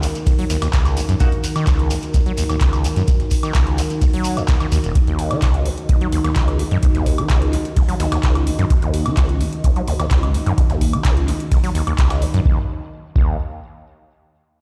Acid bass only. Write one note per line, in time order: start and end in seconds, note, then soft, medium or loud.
0.03 0.07 D#2 medium
0.27 0.33 D#2 medium
0.39 0.45 F#3 medium
0.50 0.57 D#2 medium
0.62 0.68 D#2 medium
0.73 0.98 C#2 medium
0.97 1.01 D#2 medium
1.09 1.15 F#2 loud
1.20 1.24 D#2 medium
1.56 1.65 D#3 medium
1.67 1.92 C#2 medium
1.91 1.95 D#2 medium
2.14 2.21 D#2 medium
2.26 2.32 F#3 medium
2.38 2.44 D#2 medium
2.50 2.56 D#2 medium
2.61 2.86 C#2 medium
2.84 2.88 D#2 medium
2.96 3.03 F#2 loud
3.08 3.12 D#2 medium
3.43 3.53 D#3 medium
3.55 3.80 C#2 medium
3.78 3.82 D#2 medium
4.02 4.08 D#2 medium
4.14 4.39 F#3 medium
4.37 4.43 D#2 medium
4.49 4.55 D#2 loud
4.61 4.67 D#3 medium
4.72 4.78 D#2 loud
4.84 4.93 D#1 medium
4.95 4.99 D#2 medium
5.07 5.32 D#2 medium
5.31 5.40 D#3 medium
5.42 5.67 C#2 medium
5.66 5.70 D#2 medium
5.89 5.96 D#2 medium
6.01 6.07 F#3 medium
6.13 6.19 D#2 medium
6.25 6.31 D#2 medium
6.36 6.61 C#2 medium
6.59 6.63 D#2 medium
6.71 6.78 F#2 loud
6.83 6.87 D#2 medium
6.95 7.20 D#2 medium
7.18 7.28 D#3 medium
7.30 7.55 C#2 medium
7.53 7.57 D#2 medium
7.77 7.83 D#2 medium
7.88 7.95 F#3 medium
8.00 8.07 D#2 medium
8.12 8.18 D#2 medium
8.23 8.48 C#2 medium
8.47 8.51 D#2 medium
8.59 8.65 F#2 loud
8.70 8.74 D#2 medium
8.82 9.07 D#2 medium
9.06 9.15 D#3 medium
9.17 9.42 C#2 medium
9.41 9.45 D#2 medium
9.64 9.71 D#2 medium
9.76 9.82 F#3 medium
9.88 9.94 D#2 medium
9.99 10.06 D#2 medium
10.11 10.36 C#2 medium
10.34 10.38 D#2 medium
10.46 10.53 F#2 loud
10.58 10.62 D#2 medium
10.70 10.95 D#2 medium
10.93 11.03 D#3 medium
11.05 11.30 C#2 medium
11.28 11.32 D#2 medium
11.52 11.58 D#2 medium
11.63 11.70 F#3 medium
11.75 11.82 D#2 medium
11.87 11.93 D#2 medium
11.98 12.23 C#2 medium
12.22 12.26 D#2 medium
12.34 12.40 F#2 loud
12.45 12.59 D#2 medium
13.16 13.37 D#2 medium